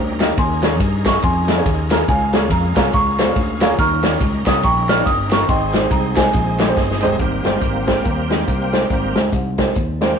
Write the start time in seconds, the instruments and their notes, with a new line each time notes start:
Already playing: fingered electric bass D2, tonewheel organ G3 C#4 D#4 A#4, celesta C#5 G5
0.20 upright piano A#3 D#4 G4 D#5, snare, clap, ride bell
0.37 fingered electric bass D#2, upright piano D#3, tonewheel organ C#4 D#4 G#4 A#4, celesta G#5 C6, kick, ride bell
0.63 upright piano A#3 D#4 G#4 C#5, snare, clap, ride bell
0.80 fingered electric bass G2, kick, ride bell
1.05 upright piano A#3 D#4 G#4 D#5, celesta C#6, kick, snare, clap, ride bell
1.22 fingered electric bass F2, celesta G#5 C6, kick, ride bell
1.48 upright piano A#3 D#4 G#4 D#5, snare, clap, ride bell
1.57 upright piano A#3 D#4 G#4 C#5
1.66 fingered electric bass D#2, kick, ride bell
1.91 upright piano A#3 D#4 G#4 A#4, celesta A#5, snare, clap, ride bell
2.08 fingered electric bass C#2, upright piano C#3, tonewheel organ G#3 C#4 F4 A#4, celesta F5 G#5, kick, ride bell
2.33 upright piano A#3 F4 G#4 C#5, snare, clap, ride bell
2.50 fingered electric bass F2, celesta A#5, kick, ride bell
2.76 fingered electric bass C2, upright piano A#3 F4 G#4 C#5, celesta A#5, kick, snare, clap, ride bell
2.93 fingered electric bass C#2, celesta F5 A#5 C#6, kick, ride bell
3.19 upright piano A#3 F4 G#4 C5, snare, clap, ride bell
3.28 upright piano A#3 F4 G#4 C#5
3.36 fingered electric bass D2, kick, ride bell
3.61 upright piano A#3 F4 G#4 C#5, snare, clap, ride bell
3.78 fingered electric bass D#2, upright piano D#3, tonewheel organ G3 C#4 D#4 G#4, celesta A#5 C#6 F6, kick, ride bell
3.83 tonewheel organ A#4
4.03 upright piano A#3 D#4 G4 C#5, snare, clap, ride bell
4.21 fingered electric bass C#2, kick, ride bell
4.46 fingered electric bass C2, upright piano A#3 D#4 G4 C#5, celesta D#6, kick, snare, clap, ride bell
4.63 fingered electric bass A#1, celesta G5 A#5 C#6, kick, ride bell
4.89 upright piano A#3 D#4 G4 C#5, celesta F6, snare, clap, ride bell
4.98 upright piano A#3 D#4 G4 C#5
5.06 fingered electric bass G1, celesta D#6, kick, ride bell
5.31 upright piano A#3 D#4 G4 A#4, celesta C#6, snare, clap, ride bell
5.49 fingered electric bass G#1, upright piano G#2, tonewheel organ G#3 C4 D#4 G#4, celesta D#5 G5 C6, kick, ride bell
5.74 upright piano G#3 D#4 G4 C5, snare, clap, ride bell
5.91 fingered electric bass C2, celesta A#5, kick, ride bell
6.16 upright piano G#3 D#4 G4 C5, celesta C5 D#5 G#5, kick, snare, clap, ride bell
6.33 fingered electric bass A#1, kick, ride bell
6.59 upright piano G#3 D#4 G4 D#5, snare, clap, ride bell
6.68 upright piano G#3 D#4 G4 C5
6.77 fingered electric bass G1, tonewheel organ D#5, kick, snare
6.91 snare
7.02 upright piano G#3 D#4 G4 C5, clap, floor tom
7.19 fingered electric bass G#1, upright piano G#2, tonewheel organ G3 A#3 C4, kick, closed hi-hat
7.45 fingered electric bass G1, upright piano G#3 D#4 G4 C5, snare, closed hi-hat
7.62 fingered electric bass G#1, kick, closed hi-hat
7.87 upright piano G#3 D#4 G4 C5, kick, snare, closed hi-hat
8.05 fingered electric bass D#2, kick, closed hi-hat
8.30 upright piano G#3 D#4 G4 D#5, snare, closed hi-hat
8.48 fingered electric bass C2, kick, closed hi-hat
8.73 upright piano G#3 D#4 G4 C5, snare, closed hi-hat
8.90 fingered electric bass G#1, upright piano G#2, tonewheel organ G3 A#3 C4, kick, closed hi-hat
9.15 fingered electric bass C#2, upright piano G#3 D#4 G4 C5, snare, closed hi-hat
9.33 fingered electric bass C2, kick, closed hi-hat
9.58 upright piano G#3 D#4 G4 C5, kick, snare, closed hi-hat
9.75 fingered electric bass D#2, kick, closed hi-hat
10.01 tonewheel organ G3 A#3 C4, upright piano G#3 D#4 G4 C5, snare, closed hi-hat